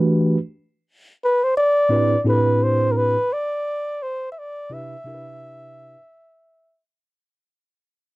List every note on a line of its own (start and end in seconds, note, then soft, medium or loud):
0.00 0.36 E3 medium
0.00 0.37 A3 medium
0.00 0.37 D4 medium
0.00 0.37 F#4 medium
0.00 0.37 G4 medium
0.00 0.38 B4 medium
1.24 1.45 B4 medium
1.44 1.56 C5 medium
1.57 2.22 D5 medium
1.89 2.14 A2 medium
1.89 2.15 C4 medium
1.89 2.15 D4 medium
1.89 2.15 E4 medium
1.89 2.16 G4 medium
1.89 2.16 B4 medium
2.24 3.15 A2 medium
2.24 3.15 C4 medium
2.24 3.16 D4 medium
2.24 3.16 E4 medium
2.24 3.16 G4 medium
2.24 2.34 A4 medium
2.28 2.65 B4 medium
2.33 3.20 B4 medium
2.63 2.93 C5 medium
2.91 2.99 A#4 soft
2.97 3.35 B4 medium
3.33 4.04 D5 medium
4.02 4.31 C5 medium
4.32 4.40 E5 medium
4.39 4.75 D5 medium
4.70 4.94 C3 medium
4.70 4.95 D4 medium
4.70 4.95 E4 medium
4.70 4.95 G4 medium
4.70 4.96 B4 medium
4.70 6.81 E5 loud
5.04 5.95 C3 medium
5.04 5.95 D4 medium
5.04 5.96 E4 medium
5.04 5.96 G4 medium
5.04 5.14 A#4 medium
5.14 6.00 B4 medium